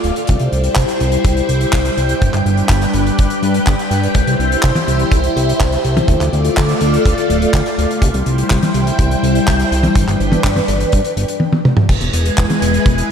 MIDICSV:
0, 0, Header, 1, 4, 480
1, 0, Start_track
1, 0, Key_signature, 0, "major"
1, 0, Tempo, 483871
1, 278, Time_signature, 4, 2, 24, 8
1, 13010, End_track
2, 0, Start_track
2, 0, Title_t, "String machine"
2, 0, Program_c, 0, 50
2, 0, Note_on_c, 0, 57, 80
2, 0, Note_on_c, 0, 65, 73
2, 0, Note_on_c, 0, 74, 74
2, 0, Note_on_c, 0, 77, 91
2, 258, Note_off_c, 0, 57, 0
2, 258, Note_off_c, 0, 65, 0
2, 258, Note_off_c, 0, 74, 0
2, 258, Note_off_c, 0, 77, 0
2, 279, Note_on_c, 0, 55, 82
2, 279, Note_on_c, 0, 72, 73
2, 279, Note_on_c, 0, 79, 93
2, 280, Note_on_c, 0, 64, 76
2, 2179, Note_off_c, 0, 72, 0
2, 2180, Note_off_c, 0, 64, 0
2, 2200, Note_on_c, 0, 71, 77
2, 2201, Note_on_c, 0, 62, 74
2, 4099, Note_off_c, 0, 71, 0
2, 4100, Note_off_c, 0, 62, 0
2, 4121, Note_on_c, 0, 64, 72
2, 4121, Note_on_c, 0, 72, 75
2, 5998, Note_off_c, 0, 55, 0
2, 5999, Note_off_c, 0, 79, 0
2, 6020, Note_off_c, 0, 64, 0
2, 6020, Note_off_c, 0, 72, 0
2, 6038, Note_on_c, 0, 57, 83
2, 6038, Note_on_c, 0, 65, 75
2, 6038, Note_on_c, 0, 74, 75
2, 6038, Note_on_c, 0, 77, 88
2, 7938, Note_off_c, 0, 57, 0
2, 7938, Note_off_c, 0, 65, 0
2, 7938, Note_off_c, 0, 74, 0
2, 7938, Note_off_c, 0, 77, 0
2, 7954, Note_on_c, 0, 64, 77
2, 7955, Note_on_c, 0, 55, 80
2, 7955, Note_on_c, 0, 72, 72
2, 7955, Note_on_c, 0, 79, 92
2, 9857, Note_off_c, 0, 64, 0
2, 9857, Note_off_c, 0, 72, 0
2, 9874, Note_on_c, 0, 62, 75
2, 9874, Note_on_c, 0, 71, 72
2, 11283, Note_off_c, 0, 55, 0
2, 11283, Note_off_c, 0, 79, 0
2, 11301, Note_off_c, 0, 62, 0
2, 11302, Note_off_c, 0, 71, 0
2, 11796, Note_on_c, 0, 56, 82
2, 11797, Note_on_c, 0, 64, 77
2, 11798, Note_on_c, 0, 71, 77
2, 11798, Note_on_c, 0, 80, 93
2, 13010, Note_off_c, 0, 56, 0
2, 13010, Note_off_c, 0, 64, 0
2, 13010, Note_off_c, 0, 71, 0
2, 13010, Note_off_c, 0, 80, 0
2, 13010, End_track
3, 0, Start_track
3, 0, Title_t, "Analog synth bass"
3, 0, Program_c, 1, 38
3, 37, Note_on_c, 1, 26, 81
3, 122, Note_off_c, 1, 26, 0
3, 287, Note_on_c, 1, 36, 97
3, 367, Note_off_c, 1, 36, 0
3, 399, Note_on_c, 1, 36, 90
3, 483, Note_off_c, 1, 36, 0
3, 518, Note_on_c, 1, 36, 90
3, 688, Note_off_c, 1, 36, 0
3, 758, Note_on_c, 1, 36, 95
3, 843, Note_off_c, 1, 36, 0
3, 997, Note_on_c, 1, 36, 88
3, 1167, Note_off_c, 1, 36, 0
3, 1236, Note_on_c, 1, 36, 96
3, 1407, Note_off_c, 1, 36, 0
3, 1477, Note_on_c, 1, 36, 94
3, 1647, Note_off_c, 1, 36, 0
3, 1718, Note_on_c, 1, 36, 91
3, 1887, Note_off_c, 1, 36, 0
3, 1959, Note_on_c, 1, 36, 88
3, 2128, Note_off_c, 1, 36, 0
3, 2201, Note_on_c, 1, 31, 76
3, 2284, Note_off_c, 1, 31, 0
3, 2319, Note_on_c, 1, 31, 79
3, 2403, Note_off_c, 1, 31, 0
3, 2438, Note_on_c, 1, 31, 89
3, 2607, Note_off_c, 1, 31, 0
3, 2672, Note_on_c, 1, 31, 83
3, 2845, Note_off_c, 1, 31, 0
3, 2917, Note_on_c, 1, 31, 99
3, 3087, Note_off_c, 1, 31, 0
3, 3163, Note_on_c, 1, 31, 95
3, 3245, Note_off_c, 1, 31, 0
3, 3399, Note_on_c, 1, 43, 96
3, 3568, Note_off_c, 1, 43, 0
3, 3641, Note_on_c, 1, 31, 99
3, 3724, Note_off_c, 1, 31, 0
3, 3877, Note_on_c, 1, 43, 102
3, 4047, Note_off_c, 1, 43, 0
3, 4115, Note_on_c, 1, 36, 97
3, 4201, Note_off_c, 1, 36, 0
3, 4239, Note_on_c, 1, 36, 91
3, 4323, Note_off_c, 1, 36, 0
3, 4359, Note_on_c, 1, 36, 90
3, 4528, Note_off_c, 1, 36, 0
3, 4602, Note_on_c, 1, 36, 93
3, 4685, Note_off_c, 1, 36, 0
3, 4840, Note_on_c, 1, 36, 88
3, 5009, Note_off_c, 1, 36, 0
3, 5074, Note_on_c, 1, 36, 95
3, 5246, Note_off_c, 1, 36, 0
3, 5321, Note_on_c, 1, 36, 95
3, 5489, Note_off_c, 1, 36, 0
3, 5559, Note_on_c, 1, 36, 92
3, 5728, Note_off_c, 1, 36, 0
3, 5800, Note_on_c, 1, 36, 91
3, 5969, Note_off_c, 1, 36, 0
3, 6032, Note_on_c, 1, 38, 79
3, 6120, Note_off_c, 1, 38, 0
3, 6159, Note_on_c, 1, 38, 79
3, 6243, Note_off_c, 1, 38, 0
3, 6279, Note_on_c, 1, 38, 94
3, 6448, Note_off_c, 1, 38, 0
3, 6521, Note_on_c, 1, 38, 82
3, 6689, Note_off_c, 1, 38, 0
3, 6759, Note_on_c, 1, 38, 97
3, 6928, Note_off_c, 1, 38, 0
3, 6999, Note_on_c, 1, 38, 95
3, 7083, Note_off_c, 1, 38, 0
3, 7238, Note_on_c, 1, 26, 89
3, 7407, Note_off_c, 1, 26, 0
3, 7475, Note_on_c, 1, 38, 88
3, 7561, Note_off_c, 1, 38, 0
3, 7719, Note_on_c, 1, 26, 85
3, 7803, Note_off_c, 1, 26, 0
3, 7954, Note_on_c, 1, 36, 95
3, 8041, Note_off_c, 1, 36, 0
3, 8078, Note_on_c, 1, 36, 94
3, 8163, Note_off_c, 1, 36, 0
3, 8198, Note_on_c, 1, 36, 89
3, 8368, Note_off_c, 1, 36, 0
3, 8442, Note_on_c, 1, 36, 93
3, 8525, Note_off_c, 1, 36, 0
3, 8676, Note_on_c, 1, 36, 88
3, 8846, Note_off_c, 1, 36, 0
3, 8916, Note_on_c, 1, 36, 96
3, 9087, Note_off_c, 1, 36, 0
3, 9157, Note_on_c, 1, 36, 95
3, 9327, Note_off_c, 1, 36, 0
3, 9403, Note_on_c, 1, 36, 96
3, 9570, Note_off_c, 1, 36, 0
3, 9638, Note_on_c, 1, 36, 89
3, 9808, Note_off_c, 1, 36, 0
3, 9874, Note_on_c, 1, 31, 81
3, 9961, Note_off_c, 1, 31, 0
3, 9999, Note_on_c, 1, 31, 78
3, 10083, Note_off_c, 1, 31, 0
3, 10119, Note_on_c, 1, 31, 91
3, 10288, Note_off_c, 1, 31, 0
3, 10357, Note_on_c, 1, 31, 83
3, 10527, Note_off_c, 1, 31, 0
3, 10598, Note_on_c, 1, 31, 99
3, 10768, Note_off_c, 1, 31, 0
3, 10843, Note_on_c, 1, 43, 85
3, 10925, Note_off_c, 1, 43, 0
3, 11079, Note_on_c, 1, 31, 86
3, 11163, Note_off_c, 1, 31, 0
3, 11796, Note_on_c, 1, 28, 100
3, 11881, Note_off_c, 1, 28, 0
3, 11919, Note_on_c, 1, 28, 93
3, 12003, Note_off_c, 1, 28, 0
3, 12039, Note_on_c, 1, 28, 94
3, 12208, Note_off_c, 1, 28, 0
3, 12281, Note_on_c, 1, 28, 97
3, 12364, Note_off_c, 1, 28, 0
3, 12518, Note_on_c, 1, 28, 90
3, 12687, Note_off_c, 1, 28, 0
3, 12755, Note_on_c, 1, 28, 100
3, 12926, Note_off_c, 1, 28, 0
3, 13010, End_track
4, 0, Start_track
4, 0, Title_t, "Drums"
4, 37, Note_on_c, 9, 42, 75
4, 136, Note_off_c, 9, 42, 0
4, 160, Note_on_c, 9, 42, 50
4, 259, Note_off_c, 9, 42, 0
4, 270, Note_on_c, 9, 42, 89
4, 287, Note_on_c, 9, 36, 106
4, 369, Note_off_c, 9, 42, 0
4, 386, Note_off_c, 9, 36, 0
4, 391, Note_on_c, 9, 42, 48
4, 490, Note_off_c, 9, 42, 0
4, 521, Note_on_c, 9, 42, 49
4, 620, Note_off_c, 9, 42, 0
4, 632, Note_on_c, 9, 42, 53
4, 731, Note_off_c, 9, 42, 0
4, 748, Note_on_c, 9, 39, 111
4, 758, Note_on_c, 9, 36, 100
4, 758, Note_on_c, 9, 42, 102
4, 848, Note_off_c, 9, 39, 0
4, 857, Note_off_c, 9, 36, 0
4, 857, Note_off_c, 9, 42, 0
4, 878, Note_on_c, 9, 42, 57
4, 977, Note_off_c, 9, 42, 0
4, 996, Note_on_c, 9, 42, 75
4, 1095, Note_off_c, 9, 42, 0
4, 1110, Note_on_c, 9, 42, 52
4, 1209, Note_off_c, 9, 42, 0
4, 1236, Note_on_c, 9, 36, 123
4, 1237, Note_on_c, 9, 42, 95
4, 1335, Note_off_c, 9, 36, 0
4, 1336, Note_off_c, 9, 42, 0
4, 1357, Note_on_c, 9, 42, 49
4, 1456, Note_off_c, 9, 42, 0
4, 1477, Note_on_c, 9, 42, 67
4, 1577, Note_off_c, 9, 42, 0
4, 1594, Note_on_c, 9, 42, 51
4, 1693, Note_off_c, 9, 42, 0
4, 1711, Note_on_c, 9, 39, 121
4, 1717, Note_on_c, 9, 36, 108
4, 1721, Note_on_c, 9, 42, 98
4, 1811, Note_off_c, 9, 39, 0
4, 1817, Note_off_c, 9, 36, 0
4, 1820, Note_off_c, 9, 42, 0
4, 1836, Note_on_c, 9, 42, 56
4, 1935, Note_off_c, 9, 42, 0
4, 1959, Note_on_c, 9, 42, 75
4, 2058, Note_off_c, 9, 42, 0
4, 2074, Note_on_c, 9, 42, 56
4, 2173, Note_off_c, 9, 42, 0
4, 2198, Note_on_c, 9, 42, 91
4, 2200, Note_on_c, 9, 36, 119
4, 2298, Note_off_c, 9, 42, 0
4, 2299, Note_off_c, 9, 36, 0
4, 2316, Note_on_c, 9, 42, 53
4, 2319, Note_on_c, 9, 39, 39
4, 2415, Note_off_c, 9, 42, 0
4, 2418, Note_off_c, 9, 39, 0
4, 2442, Note_on_c, 9, 42, 49
4, 2541, Note_off_c, 9, 42, 0
4, 2553, Note_on_c, 9, 42, 50
4, 2653, Note_off_c, 9, 42, 0
4, 2669, Note_on_c, 9, 39, 117
4, 2673, Note_on_c, 9, 36, 99
4, 2675, Note_on_c, 9, 42, 102
4, 2768, Note_off_c, 9, 39, 0
4, 2772, Note_off_c, 9, 36, 0
4, 2775, Note_off_c, 9, 42, 0
4, 2796, Note_on_c, 9, 42, 53
4, 2895, Note_off_c, 9, 42, 0
4, 2911, Note_on_c, 9, 42, 72
4, 3010, Note_off_c, 9, 42, 0
4, 3041, Note_on_c, 9, 42, 49
4, 3140, Note_off_c, 9, 42, 0
4, 3159, Note_on_c, 9, 42, 90
4, 3163, Note_on_c, 9, 36, 117
4, 3258, Note_off_c, 9, 42, 0
4, 3262, Note_off_c, 9, 36, 0
4, 3275, Note_on_c, 9, 42, 54
4, 3374, Note_off_c, 9, 42, 0
4, 3400, Note_on_c, 9, 42, 72
4, 3499, Note_off_c, 9, 42, 0
4, 3515, Note_on_c, 9, 42, 56
4, 3614, Note_off_c, 9, 42, 0
4, 3638, Note_on_c, 9, 39, 116
4, 3641, Note_on_c, 9, 36, 108
4, 3644, Note_on_c, 9, 42, 81
4, 3737, Note_off_c, 9, 39, 0
4, 3740, Note_off_c, 9, 36, 0
4, 3743, Note_off_c, 9, 42, 0
4, 3762, Note_on_c, 9, 42, 48
4, 3861, Note_off_c, 9, 42, 0
4, 3881, Note_on_c, 9, 42, 68
4, 3980, Note_off_c, 9, 42, 0
4, 4002, Note_on_c, 9, 42, 52
4, 4101, Note_off_c, 9, 42, 0
4, 4111, Note_on_c, 9, 42, 88
4, 4115, Note_on_c, 9, 36, 114
4, 4211, Note_off_c, 9, 42, 0
4, 4215, Note_off_c, 9, 36, 0
4, 4240, Note_on_c, 9, 42, 50
4, 4339, Note_off_c, 9, 42, 0
4, 4366, Note_on_c, 9, 42, 47
4, 4465, Note_off_c, 9, 42, 0
4, 4484, Note_on_c, 9, 42, 53
4, 4583, Note_off_c, 9, 42, 0
4, 4590, Note_on_c, 9, 39, 113
4, 4595, Note_on_c, 9, 42, 86
4, 4602, Note_on_c, 9, 36, 99
4, 4689, Note_off_c, 9, 39, 0
4, 4694, Note_off_c, 9, 42, 0
4, 4701, Note_off_c, 9, 36, 0
4, 4716, Note_on_c, 9, 48, 53
4, 4720, Note_on_c, 9, 42, 53
4, 4815, Note_off_c, 9, 48, 0
4, 4819, Note_off_c, 9, 42, 0
4, 4842, Note_on_c, 9, 42, 69
4, 4941, Note_off_c, 9, 42, 0
4, 4954, Note_on_c, 9, 42, 46
4, 5053, Note_off_c, 9, 42, 0
4, 5074, Note_on_c, 9, 36, 123
4, 5077, Note_on_c, 9, 42, 81
4, 5174, Note_off_c, 9, 36, 0
4, 5176, Note_off_c, 9, 42, 0
4, 5194, Note_on_c, 9, 42, 51
4, 5294, Note_off_c, 9, 42, 0
4, 5324, Note_on_c, 9, 42, 72
4, 5423, Note_off_c, 9, 42, 0
4, 5448, Note_on_c, 9, 42, 56
4, 5547, Note_off_c, 9, 42, 0
4, 5553, Note_on_c, 9, 42, 90
4, 5559, Note_on_c, 9, 36, 109
4, 5560, Note_on_c, 9, 39, 102
4, 5653, Note_off_c, 9, 42, 0
4, 5658, Note_off_c, 9, 36, 0
4, 5659, Note_off_c, 9, 39, 0
4, 5679, Note_on_c, 9, 42, 52
4, 5778, Note_off_c, 9, 42, 0
4, 5798, Note_on_c, 9, 42, 74
4, 5898, Note_off_c, 9, 42, 0
4, 5919, Note_on_c, 9, 48, 83
4, 5923, Note_on_c, 9, 42, 49
4, 6019, Note_off_c, 9, 48, 0
4, 6022, Note_off_c, 9, 42, 0
4, 6032, Note_on_c, 9, 36, 112
4, 6037, Note_on_c, 9, 42, 95
4, 6132, Note_off_c, 9, 36, 0
4, 6136, Note_off_c, 9, 42, 0
4, 6161, Note_on_c, 9, 42, 58
4, 6162, Note_on_c, 9, 39, 31
4, 6260, Note_off_c, 9, 42, 0
4, 6261, Note_off_c, 9, 39, 0
4, 6280, Note_on_c, 9, 42, 47
4, 6379, Note_off_c, 9, 42, 0
4, 6394, Note_on_c, 9, 42, 53
4, 6494, Note_off_c, 9, 42, 0
4, 6517, Note_on_c, 9, 39, 119
4, 6521, Note_on_c, 9, 36, 89
4, 6524, Note_on_c, 9, 42, 88
4, 6616, Note_off_c, 9, 39, 0
4, 6621, Note_off_c, 9, 36, 0
4, 6624, Note_off_c, 9, 42, 0
4, 6634, Note_on_c, 9, 42, 48
4, 6733, Note_off_c, 9, 42, 0
4, 6752, Note_on_c, 9, 42, 74
4, 6851, Note_off_c, 9, 42, 0
4, 6882, Note_on_c, 9, 42, 59
4, 6981, Note_off_c, 9, 42, 0
4, 6999, Note_on_c, 9, 36, 118
4, 7007, Note_on_c, 9, 42, 91
4, 7098, Note_off_c, 9, 36, 0
4, 7107, Note_off_c, 9, 42, 0
4, 7120, Note_on_c, 9, 42, 56
4, 7220, Note_off_c, 9, 42, 0
4, 7242, Note_on_c, 9, 42, 70
4, 7342, Note_off_c, 9, 42, 0
4, 7360, Note_on_c, 9, 42, 55
4, 7459, Note_off_c, 9, 42, 0
4, 7475, Note_on_c, 9, 36, 95
4, 7479, Note_on_c, 9, 39, 101
4, 7481, Note_on_c, 9, 42, 88
4, 7574, Note_off_c, 9, 36, 0
4, 7578, Note_off_c, 9, 39, 0
4, 7580, Note_off_c, 9, 42, 0
4, 7596, Note_on_c, 9, 42, 52
4, 7695, Note_off_c, 9, 42, 0
4, 7724, Note_on_c, 9, 42, 70
4, 7823, Note_off_c, 9, 42, 0
4, 7843, Note_on_c, 9, 42, 54
4, 7942, Note_off_c, 9, 42, 0
4, 7954, Note_on_c, 9, 36, 98
4, 7955, Note_on_c, 9, 42, 104
4, 8053, Note_off_c, 9, 36, 0
4, 8054, Note_off_c, 9, 42, 0
4, 8076, Note_on_c, 9, 42, 54
4, 8175, Note_off_c, 9, 42, 0
4, 8195, Note_on_c, 9, 42, 56
4, 8294, Note_off_c, 9, 42, 0
4, 8315, Note_on_c, 9, 42, 53
4, 8414, Note_off_c, 9, 42, 0
4, 8433, Note_on_c, 9, 39, 103
4, 8439, Note_on_c, 9, 42, 91
4, 8442, Note_on_c, 9, 36, 89
4, 8532, Note_off_c, 9, 39, 0
4, 8538, Note_off_c, 9, 42, 0
4, 8541, Note_off_c, 9, 36, 0
4, 8556, Note_on_c, 9, 42, 57
4, 8558, Note_on_c, 9, 48, 62
4, 8655, Note_off_c, 9, 42, 0
4, 8658, Note_off_c, 9, 48, 0
4, 8673, Note_on_c, 9, 42, 72
4, 8772, Note_off_c, 9, 42, 0
4, 8799, Note_on_c, 9, 42, 62
4, 8898, Note_off_c, 9, 42, 0
4, 8915, Note_on_c, 9, 42, 91
4, 8916, Note_on_c, 9, 36, 108
4, 9014, Note_off_c, 9, 42, 0
4, 9015, Note_off_c, 9, 36, 0
4, 9041, Note_on_c, 9, 42, 51
4, 9140, Note_off_c, 9, 42, 0
4, 9163, Note_on_c, 9, 42, 75
4, 9262, Note_off_c, 9, 42, 0
4, 9278, Note_on_c, 9, 42, 57
4, 9378, Note_off_c, 9, 42, 0
4, 9400, Note_on_c, 9, 39, 111
4, 9403, Note_on_c, 9, 36, 93
4, 9404, Note_on_c, 9, 42, 91
4, 9499, Note_off_c, 9, 39, 0
4, 9502, Note_off_c, 9, 36, 0
4, 9503, Note_off_c, 9, 42, 0
4, 9519, Note_on_c, 9, 42, 48
4, 9618, Note_off_c, 9, 42, 0
4, 9645, Note_on_c, 9, 42, 71
4, 9744, Note_off_c, 9, 42, 0
4, 9754, Note_on_c, 9, 48, 76
4, 9758, Note_on_c, 9, 42, 54
4, 9854, Note_off_c, 9, 48, 0
4, 9858, Note_off_c, 9, 42, 0
4, 9875, Note_on_c, 9, 36, 114
4, 9880, Note_on_c, 9, 42, 108
4, 9974, Note_off_c, 9, 36, 0
4, 9979, Note_off_c, 9, 42, 0
4, 10003, Note_on_c, 9, 39, 32
4, 10004, Note_on_c, 9, 42, 56
4, 10102, Note_off_c, 9, 39, 0
4, 10103, Note_off_c, 9, 42, 0
4, 10122, Note_on_c, 9, 42, 55
4, 10222, Note_off_c, 9, 42, 0
4, 10235, Note_on_c, 9, 48, 68
4, 10244, Note_on_c, 9, 42, 59
4, 10334, Note_off_c, 9, 48, 0
4, 10343, Note_off_c, 9, 42, 0
4, 10357, Note_on_c, 9, 36, 90
4, 10358, Note_on_c, 9, 39, 125
4, 10361, Note_on_c, 9, 42, 101
4, 10456, Note_off_c, 9, 36, 0
4, 10458, Note_off_c, 9, 39, 0
4, 10460, Note_off_c, 9, 42, 0
4, 10477, Note_on_c, 9, 48, 59
4, 10482, Note_on_c, 9, 42, 53
4, 10576, Note_off_c, 9, 48, 0
4, 10581, Note_off_c, 9, 42, 0
4, 10597, Note_on_c, 9, 42, 80
4, 10697, Note_off_c, 9, 42, 0
4, 10718, Note_on_c, 9, 42, 53
4, 10817, Note_off_c, 9, 42, 0
4, 10835, Note_on_c, 9, 42, 102
4, 10843, Note_on_c, 9, 36, 103
4, 10935, Note_off_c, 9, 42, 0
4, 10942, Note_off_c, 9, 36, 0
4, 10956, Note_on_c, 9, 42, 53
4, 11055, Note_off_c, 9, 42, 0
4, 11081, Note_on_c, 9, 42, 76
4, 11180, Note_off_c, 9, 42, 0
4, 11193, Note_on_c, 9, 42, 52
4, 11293, Note_off_c, 9, 42, 0
4, 11308, Note_on_c, 9, 48, 57
4, 11407, Note_off_c, 9, 48, 0
4, 11433, Note_on_c, 9, 48, 64
4, 11532, Note_off_c, 9, 48, 0
4, 11558, Note_on_c, 9, 47, 82
4, 11657, Note_off_c, 9, 47, 0
4, 11673, Note_on_c, 9, 45, 85
4, 11772, Note_off_c, 9, 45, 0
4, 11796, Note_on_c, 9, 36, 104
4, 11797, Note_on_c, 9, 42, 75
4, 11799, Note_on_c, 9, 49, 112
4, 11895, Note_off_c, 9, 36, 0
4, 11896, Note_off_c, 9, 42, 0
4, 11898, Note_off_c, 9, 49, 0
4, 11913, Note_on_c, 9, 42, 57
4, 12012, Note_off_c, 9, 42, 0
4, 12036, Note_on_c, 9, 42, 102
4, 12136, Note_off_c, 9, 42, 0
4, 12157, Note_on_c, 9, 42, 62
4, 12256, Note_off_c, 9, 42, 0
4, 12273, Note_on_c, 9, 42, 89
4, 12279, Note_on_c, 9, 39, 124
4, 12282, Note_on_c, 9, 36, 97
4, 12372, Note_off_c, 9, 42, 0
4, 12378, Note_off_c, 9, 39, 0
4, 12382, Note_off_c, 9, 36, 0
4, 12398, Note_on_c, 9, 42, 53
4, 12403, Note_on_c, 9, 48, 59
4, 12497, Note_off_c, 9, 42, 0
4, 12502, Note_off_c, 9, 48, 0
4, 12521, Note_on_c, 9, 42, 108
4, 12620, Note_off_c, 9, 42, 0
4, 12640, Note_on_c, 9, 42, 60
4, 12739, Note_off_c, 9, 42, 0
4, 12755, Note_on_c, 9, 36, 127
4, 12760, Note_on_c, 9, 42, 72
4, 12854, Note_off_c, 9, 36, 0
4, 12860, Note_off_c, 9, 42, 0
4, 12877, Note_on_c, 9, 42, 62
4, 12976, Note_off_c, 9, 42, 0
4, 13010, End_track
0, 0, End_of_file